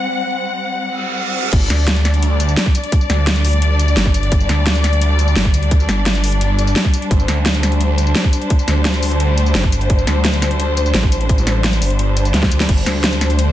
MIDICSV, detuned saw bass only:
0, 0, Header, 1, 2, 480
1, 0, Start_track
1, 0, Tempo, 348837
1, 180, Time_signature, 4, 2, 24, 8
1, 18604, End_track
2, 0, Start_track
2, 0, Title_t, "Detuned saw bass"
2, 0, Program_c, 0, 39
2, 2102, Note_on_c, 0, 31, 97
2, 2322, Note_off_c, 0, 31, 0
2, 2341, Note_on_c, 0, 38, 96
2, 3522, Note_off_c, 0, 38, 0
2, 4261, Note_on_c, 0, 38, 97
2, 5442, Note_off_c, 0, 38, 0
2, 5461, Note_on_c, 0, 31, 97
2, 5921, Note_off_c, 0, 31, 0
2, 5942, Note_on_c, 0, 31, 98
2, 6162, Note_off_c, 0, 31, 0
2, 6181, Note_on_c, 0, 38, 100
2, 7362, Note_off_c, 0, 38, 0
2, 7382, Note_on_c, 0, 31, 99
2, 7602, Note_off_c, 0, 31, 0
2, 7621, Note_on_c, 0, 38, 99
2, 8081, Note_off_c, 0, 38, 0
2, 8101, Note_on_c, 0, 31, 98
2, 9282, Note_off_c, 0, 31, 0
2, 9782, Note_on_c, 0, 31, 99
2, 10002, Note_off_c, 0, 31, 0
2, 10021, Note_on_c, 0, 38, 99
2, 11202, Note_off_c, 0, 38, 0
2, 11941, Note_on_c, 0, 38, 99
2, 13122, Note_off_c, 0, 38, 0
2, 13140, Note_on_c, 0, 31, 98
2, 13601, Note_off_c, 0, 31, 0
2, 13859, Note_on_c, 0, 38, 100
2, 15041, Note_off_c, 0, 38, 0
2, 15061, Note_on_c, 0, 33, 98
2, 16242, Note_off_c, 0, 33, 0
2, 16260, Note_on_c, 0, 31, 102
2, 16961, Note_off_c, 0, 31, 0
2, 16981, Note_on_c, 0, 38, 99
2, 17441, Note_off_c, 0, 38, 0
2, 17461, Note_on_c, 0, 31, 102
2, 17682, Note_off_c, 0, 31, 0
2, 17701, Note_on_c, 0, 38, 97
2, 18604, Note_off_c, 0, 38, 0
2, 18604, End_track
0, 0, End_of_file